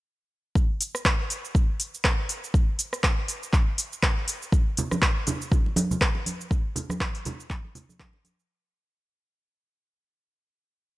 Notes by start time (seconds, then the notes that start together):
0.55 kick, shaker
0.81 open hi-hat, shaker
0.95 cross-stick, shaker
1.05 kick, cross-stick, clap, shaker
1.30 open hi-hat, shaker
1.45 shaker
1.55 kick, shaker
1.80 open hi-hat, shaker
1.94 shaker
2.04 kick, cross-stick, clap, shaker
2.29 open hi-hat, shaker
2.44 shaker
2.54 kick, shaker
2.79 open hi-hat, shaker
2.93 cross-stick, shaker
3.04 kick, cross-stick, clap, shaker
3.28 open hi-hat, shaker
3.43 shaker
3.53 kick, clap, shaker
3.78 open hi-hat, shaker
3.93 shaker
4.03 kick, cross-stick, clap, shaker
4.28 open hi-hat, shaker
4.42 shaker
4.52 kick, muted conga, shaker
4.77 open hi-hat, low conga, shaker
4.91 cross-stick, muted conga, high conga, shaker
5.02 kick, cross-stick, clap, shaker
5.27 open hi-hat, muted conga, low conga, shaker
5.42 shaker
5.52 kick, low conga, shaker
5.66 muted conga
5.76 open hi-hat, high conga, shaker
5.91 high conga, low conga, shaker
6.01 kick, cross-stick, clap, shaker
6.15 muted conga
6.26 open hi-hat, high conga, shaker
6.41 shaker
6.51 kick, muted conga, shaker
6.76 open hi-hat, low conga, shaker
6.90 cross-stick, muted conga, high conga, shaker
7.00 kick, cross-stick, clap, shaker
7.15 open hi-hat
7.25 open hi-hat, muted conga, low conga, shaker
7.40 shaker
7.50 kick, clap, high conga, shaker
7.65 muted conga
7.75 open hi-hat, low conga, shaker
7.89 high conga, shaker
8.00 kick, cross-stick, clap, high conga, low conga, shaker
8.13 muted conga
8.25 open hi-hat, high conga, shaker
8.40 shaker